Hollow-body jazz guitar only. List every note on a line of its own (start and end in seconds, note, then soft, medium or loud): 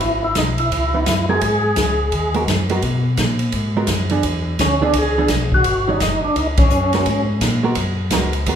0.94 1.06 E3 medium
0.94 1.06 B3 medium
0.94 1.07 D#4 medium
1.29 1.41 G#3 medium
1.29 1.41 B3 medium
1.29 1.42 F#4 medium
1.29 1.42 A#4 medium
2.34 2.47 G#3 medium
2.34 2.47 B3 medium
2.34 2.47 F#4 medium
2.34 2.48 A#4 medium
2.70 2.82 G#3 medium
2.70 2.82 B3 medium
2.70 2.83 F#4 medium
2.70 2.83 A#4 medium
3.77 3.88 G#3 medium
3.77 3.88 B3 medium
3.77 3.89 F#4 medium
3.77 3.89 A#4 medium
4.11 4.23 E3 medium
4.11 4.23 B3 medium
4.11 4.24 D4 medium
4.11 4.24 G#4 medium
4.82 4.94 E3 medium
4.82 4.94 B3 medium
4.82 4.94 D4 medium
4.82 4.94 G#4 medium
5.18 5.30 E3 medium
5.18 5.30 B3 medium
5.18 5.30 D4 medium
5.18 5.30 G#4 medium
5.88 6.00 D#3 medium
5.88 6.00 G3 medium
5.88 6.00 C#4 medium
5.88 6.00 F#4 medium
6.94 7.06 G#3 medium
6.94 7.06 B3 medium
6.94 7.06 F#4 medium
6.94 7.06 A#4 medium
7.63 7.76 G#3 medium
7.63 7.76 B3 medium
7.63 7.76 F#4 medium
7.63 7.76 A#4 medium
8.12 8.32 G#3 medium
8.12 8.32 B3 medium
8.12 8.33 F#4 medium
8.12 8.33 A#4 medium
8.48 8.55 G#3 medium
8.48 8.55 B3 medium
8.48 8.55 F#4 medium
8.48 8.55 A#4 medium